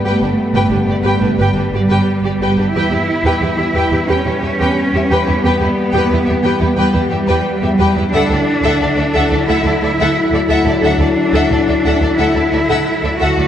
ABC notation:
X:1
M:4/4
L:1/16
Q:1/4=89
K:Edor
V:1 name="Violin section"
g B z g B d g B g B d g z d g B | g B z g B e g B g B e g z e g B | g B z g B e g B g B e g z e g B | f d z f d e f d f d e f z e f d |
f d z f d e f d f d e f z e f d |]
V:2 name="Violin section"
B D z B D G B D B D G B z G B D | B E z B E G B E B E G B z G B E | B E z B E G B E B E G B z G B E | e A z e A d e A e A d e z d e A |
e A z e A d e A e A d e z d e A |]
V:3 name="Viola section"
G G z G G G G G G G G G z G G G | G G z G G G G G G G G G z G G G | G G z G G G G G G G G G z G G G | A A z A A A A A A A A A z A A A |
A A z A A A A A A A A A z A A A |]
V:4 name="Cello section"
A,8 G,8 | E8 C8 | B,8 G,8 | D8 E6 E2 |
D8 E6 F2 |]
V:5 name="French horn section"
[G,B,]16 | [G,B,]16- | [G,B,]16 | [F,E]16- |
[F,E]16 |]
V:6 name="Double bass section" clef=bass
G,,, G,,, z G,,, G,,, G,,, G,,, G,,, G,,, G,,, G,,, G,,, z G,,, G,,, G,,, | E,, E,, z E,, E,, E,, E,, E,, E,, E,, E,, E,, z E,, E,, E,, | E,, E,, z E,, E,, E,, E,, E,, E,, E,, E,, E,, z E,, E,, E,, | D,, D,, z D,, D,, D,, D,, D,, D,, D,, D,, D,, z D,, D,, D,, |
D,, D,, z D,, D,, D,, D,, D,, D,, D,, D,, D,, z D,, D,, D,, |]